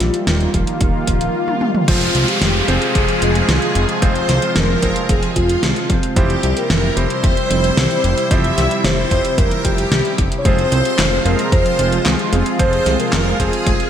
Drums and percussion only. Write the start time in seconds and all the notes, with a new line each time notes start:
0.00 snare, closed hi-hat
0.14 closed hi-hat
0.27 snare, closed hi-hat
0.41 closed hi-hat
0.54 kick, closed hi-hat
0.67 closed hi-hat
0.81 kick, closed hi-hat
1.07 kick, closed hi-hat
1.21 closed hi-hat
1.48 high tom
1.61 mid tom
1.74 mid tom
1.88 kick, closed hi-hat, crash
2.01 closed hi-hat
2.15 closed hi-hat
2.28 closed hi-hat
2.42 snare, closed hi-hat
2.68 closed hi-hat
2.82 closed hi-hat
2.95 kick, closed hi-hat
3.08 closed hi-hat
3.22 closed hi-hat
3.35 closed hi-hat
3.49 snare, closed hi-hat
3.62 closed hi-hat
3.75 closed hi-hat
3.89 closed hi-hat
4.02 kick, closed hi-hat
4.15 closed hi-hat
4.29 snare, closed hi-hat
4.42 closed hi-hat
4.56 snare, closed hi-hat
4.82 kick, closed hi-hat
4.96 closed hi-hat
5.09 kick, closed hi-hat
5.23 closed hi-hat
5.36 kick, closed hi-hat
5.49 closed hi-hat
5.63 snare, closed hi-hat
5.76 closed hi-hat
5.90 kick, closed hi-hat
6.03 closed hi-hat
6.16 kick, closed hi-hat
6.30 closed hi-hat
6.43 closed hi-hat
6.57 closed hi-hat
6.70 snare, closed hi-hat
6.97 closed hi-hat
7.10 closed hi-hat
7.24 kick, closed hi-hat
7.37 closed hi-hat
7.51 closed hi-hat
7.64 closed hi-hat
7.77 snare, closed hi-hat
7.91 closed hi-hat
8.04 closed hi-hat
8.18 closed hi-hat
8.31 kick, closed hi-hat
8.44 closed hi-hat
8.58 snare, closed hi-hat
8.71 closed hi-hat
8.84 snare, closed hi-hat
9.11 kick, closed hi-hat
9.25 closed hi-hat
9.38 kick, closed hi-hat
9.51 closed hi-hat
9.65 kick, closed hi-hat
9.78 closed hi-hat
9.92 snare, closed hi-hat
10.05 closed hi-hat
10.18 kick, closed hi-hat
10.32 closed hi-hat
10.45 kick, closed hi-hat
10.59 closed hi-hat
10.72 closed hi-hat
10.85 closed hi-hat
10.99 snare, clap, closed hi-hat
11.26 closed hi-hat
11.39 closed hi-hat
11.52 kick, closed hi-hat
11.66 closed hi-hat
11.79 closed hi-hat
11.92 closed hi-hat
12.06 snare, clap, closed hi-hat
12.19 closed hi-hat
12.33 closed hi-hat
12.46 closed hi-hat
12.59 kick, closed hi-hat
12.73 closed hi-hat
12.86 snare, closed hi-hat
13.00 closed hi-hat
13.13 snare, clap, closed hi-hat
13.40 kick, closed hi-hat
13.53 closed hi-hat
13.66 kick, closed hi-hat
13.80 closed hi-hat